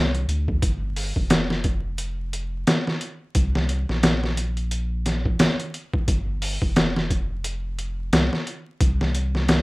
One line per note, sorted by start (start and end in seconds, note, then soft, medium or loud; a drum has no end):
0.00 0.26 C2 medium
0.15 closed hi-hat soft
0.28 0.59 D2 medium
0.28 closed hi-hat medium
0.48 kick medium
0.62 1.12 G1 medium
0.62 kick loud
0.62 closed hi-hat medium
0.96 open hi-hat medium
1.16 2.64 F1 medium
1.16 kick medium
1.30 snare loud
1.30 closed hi-hat medium
1.50 snare soft
1.64 kick medium
1.64 closed hi-hat medium
1.98 closed hi-hat medium
2.33 closed hi-hat medium
2.67 snare loud
2.67 closed hi-hat medium
2.87 snare soft
3.01 closed hi-hat medium
3.35 3.85 C2 medium
3.35 kick loud
3.35 closed hi-hat medium
3.55 snare soft
3.69 closed hi-hat medium
3.89 5.37 A#1 medium
3.89 snare soft
4.03 snare loud
4.03 closed hi-hat medium
4.24 snare soft
4.37 closed hi-hat medium
4.57 closed hi-hat soft
4.71 closed hi-hat medium
5.06 snare soft
5.06 closed hi-hat medium
5.25 kick medium
5.39 snare loud
5.39 closed hi-hat medium
5.60 closed hi-hat soft
5.74 closed hi-hat medium
5.93 kick medium
6.08 6.58 G1 medium
6.08 kick loud
6.08 closed hi-hat medium
6.42 open hi-hat medium
6.62 8.10 F1 medium
6.62 kick medium
6.76 snare loud
6.76 closed hi-hat medium
6.96 snare soft
7.10 kick medium
7.10 closed hi-hat medium
7.44 closed hi-hat medium
7.79 closed hi-hat medium
8.12 8.30 C2 medium
8.12 snare loud
8.12 closed hi-hat medium
8.33 snare soft
8.47 closed hi-hat medium
8.81 9.62 C2 medium
8.81 kick loud
8.81 closed hi-hat medium
9.01 snare soft
9.15 closed hi-hat medium
9.35 snare soft
9.48 snare loud
9.48 closed hi-hat medium